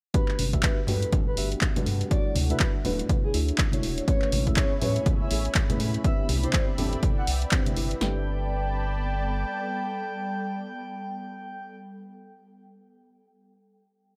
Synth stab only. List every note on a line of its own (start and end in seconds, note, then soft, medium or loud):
0.14 0.50 A3 medium
0.14 0.50 D4 medium
0.14 0.50 F#4 medium
0.14 0.50 G4 medium
0.14 0.50 B4 medium
0.53 0.79 A3 medium
0.53 0.79 D4 medium
0.53 0.79 F#4 medium
0.53 0.79 G4 medium
0.53 0.79 E5 loud
0.88 1.35 A3 medium
0.88 1.35 D4 medium
0.88 1.35 F#4 medium
0.88 1.35 G4 medium
0.88 1.35 A4 loud
1.37 1.73 A3 medium
1.37 1.73 D4 medium
1.37 1.73 F#4 medium
1.37 1.73 G4 medium
1.37 1.73 E5 medium
1.76 2.08 A3 medium
1.76 2.08 D4 medium
1.76 2.09 F#4 medium
1.76 2.09 G4 medium
1.76 2.09 B4 medium
2.11 2.46 A3 medium
2.11 2.47 D4 medium
2.11 2.47 E4 medium
2.11 2.47 F#4 medium
2.11 2.47 C#5 medium
2.50 2.76 A3 medium
2.50 2.76 D4 medium
2.50 2.76 E4 medium
2.50 2.76 F#4 medium
2.50 2.76 E5 loud
2.84 3.31 A3 medium
2.84 3.31 D4 medium
2.84 3.32 E4 medium
2.84 3.32 F#4 medium
2.84 3.32 B4 loud
3.34 3.69 A3 medium
3.34 3.69 D4 medium
3.34 3.70 E4 medium
3.34 3.70 F#4 medium
3.34 3.70 E5 medium
3.73 4.05 A3 medium
3.73 4.05 D4 medium
3.73 4.05 E4 medium
3.73 4.05 F#4 medium
3.73 4.06 C#5 medium
4.07 4.43 A3 medium
4.07 4.43 C#4 medium
4.07 4.43 E4 medium
4.07 4.43 G#4 medium
4.07 4.44 B4 medium
4.47 4.73 A3 medium
4.47 4.73 C#4 medium
4.47 4.73 E4 medium
4.47 4.73 G#4 medium
4.47 4.73 E5 loud
4.81 5.28 A3 medium
4.81 5.28 C#4 medium
4.81 5.28 E4 medium
4.81 5.28 G#4 medium
4.81 5.28 B4 loud
5.30 5.66 A3 medium
5.30 5.66 C#4 medium
5.30 5.66 E4 medium
5.30 5.66 G#4 medium
5.30 5.67 E5 medium
5.69 6.02 A3 medium
5.69 6.02 C#4 medium
5.69 6.02 E4 medium
5.69 6.02 G#4 medium
5.69 6.02 B4 medium
6.04 6.40 C4 medium
6.04 6.40 D4 medium
6.04 6.40 E4 medium
6.04 6.40 G4 medium
6.04 6.40 B4 medium
6.43 6.69 C4 medium
6.43 6.69 D4 medium
6.43 6.69 E4 medium
6.43 6.69 G4 medium
6.43 6.70 D5 loud
6.78 7.25 C4 medium
6.78 7.25 D4 medium
6.78 7.25 E4 medium
6.78 7.25 G4 medium
6.78 7.25 A4 loud
7.52 7.74 C4 medium
7.52 7.74 D4 medium
7.52 7.74 E4 medium
7.52 7.74 G4 medium
7.52 7.74 C5 medium
7.76 7.94 C4 medium
7.76 7.94 D4 medium
7.76 7.94 E4 medium
7.76 7.94 G4 medium
7.76 7.95 B4 medium
8.00 11.74 A3 medium
8.00 11.75 D4 medium
8.00 11.76 G4 medium
8.00 11.75 A4 medium
8.00 11.76 B4 medium